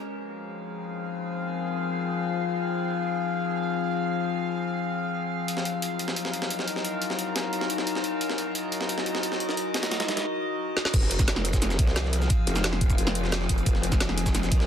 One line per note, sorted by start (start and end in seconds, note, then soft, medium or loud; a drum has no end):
0.03 5.44 F3 medium
0.03 5.44 C4 medium
0.03 5.44 G#4 medium
0.03 8.17 F5 medium
5.48 10.90 F#3 medium
5.48 10.90 D#4 medium
5.48 10.90 A#4 medium
5.48 closed hi-hat medium
5.57 snare soft
5.65 closed hi-hat medium
5.82 closed hi-hat medium
5.99 closed hi-hat medium
6.08 snare medium
6.16 closed hi-hat medium
6.25 snare soft
6.33 closed hi-hat medium
6.42 snare medium
6.50 closed hi-hat medium
6.59 snare soft
6.68 closed hi-hat medium
6.76 snare soft
6.85 closed hi-hat medium
7.02 closed hi-hat medium
7.10 snare soft
7.19 closed hi-hat medium
7.36 snare loud
7.36 closed hi-hat medium
7.53 closed hi-hat medium
7.61 snare soft
7.70 closed hi-hat medium
7.78 snare soft
7.87 closed hi-hat medium
7.95 snare soft
8.04 closed hi-hat medium
8.21 10.91 D#5 medium
8.21 closed hi-hat medium
8.30 snare soft
8.38 closed hi-hat medium
8.55 closed hi-hat medium
8.72 closed hi-hat medium
8.81 snare medium
8.89 closed hi-hat medium
8.98 snare soft
9.06 closed hi-hat medium
9.15 snare medium
9.23 closed hi-hat medium
9.32 snare soft
9.40 closed hi-hat medium
9.49 snare soft
9.57 closed hi-hat medium
9.74 snare loud
9.74 closed hi-hat medium
9.83 snare loud
9.83 closed hi-hat medium
9.91 snare loud
9.91 closed hi-hat medium
10.00 snare loud
10.00 closed hi-hat medium
10.08 snare loud
10.08 closed hi-hat medium
10.17 snare loud
10.17 closed hi-hat medium
10.77 snare medium
10.85 snare medium
10.94 11.78 F1 loud
10.94 14.67 F3 medium
10.94 14.67 C4 medium
10.94 14.67 G#4 medium
10.94 13.64 F5 medium
10.94 kick loud
10.94 closed hi-hat medium
10.94 crash loud
10.94 shaker medium
11.02 snare soft
11.11 closed hi-hat medium
11.11 closed hi-hat loud
11.11 shaker soft
11.19 kick loud
11.19 snare soft
11.19 shaker medium
11.28 snare loud
11.28 closed hi-hat medium
11.28 shaker soft
11.36 snare soft
11.45 closed hi-hat medium
11.45 closed hi-hat loud
11.45 shaker soft
11.53 kick medium
11.53 snare medium
11.53 shaker medium
11.62 snare soft
11.62 closed hi-hat medium
11.62 shaker soft
11.70 snare soft
11.70 shaker soft
11.79 12.29 C2 loud
11.79 kick loud
11.79 closed hi-hat loud
11.79 closed hi-hat medium
11.87 snare medium
11.96 snare loud
11.96 closed hi-hat medium
11.96 shaker soft
12.04 snare soft
12.13 closed hi-hat loud
12.13 closed hi-hat medium
12.21 snare soft
12.21 shaker soft
12.30 kick loud
12.30 closed hi-hat medium
12.30 shaker soft
12.47 12.97 F1 loud
12.47 closed hi-hat medium
12.47 shaker soft
12.56 snare soft
12.56 shaker medium
12.64 snare loud
12.64 closed hi-hat medium
12.64 shaker soft
12.73 snare medium
12.81 kick loud
12.81 closed hi-hat medium
12.81 shaker soft
12.90 kick loud
12.90 shaker medium
12.98 13.48 F1 loud
12.98 closed hi-hat medium
12.98 shaker soft
13.07 snare medium
13.07 shaker soft
13.15 closed hi-hat medium
13.24 snare soft
13.32 snare loud
13.32 closed hi-hat medium
13.32 shaker soft
13.41 snare soft
13.49 13.65 F1 loud
13.49 kick medium
13.49 closed hi-hat medium
13.58 closed hi-hat soft
13.58 shaker soft
13.66 14.50 F1 loud
13.66 14.67 D#5 medium
13.66 kick loud
13.66 closed hi-hat medium
13.66 shaker soft
13.75 snare soft
13.83 closed hi-hat medium
13.83 shaker soft
13.92 kick loud
13.92 snare soft
13.92 shaker medium
14.00 snare loud
14.00 closed hi-hat medium
14.00 shaker soft
14.09 snare soft
14.18 closed hi-hat medium
14.18 shaker soft
14.26 kick medium
14.26 snare medium
14.26 shaker medium
14.35 snare soft
14.35 closed hi-hat medium
14.35 shaker soft
14.43 snare soft
14.43 shaker soft
14.52 14.67 C2 loud
14.52 kick loud
14.52 closed hi-hat medium
14.60 snare medium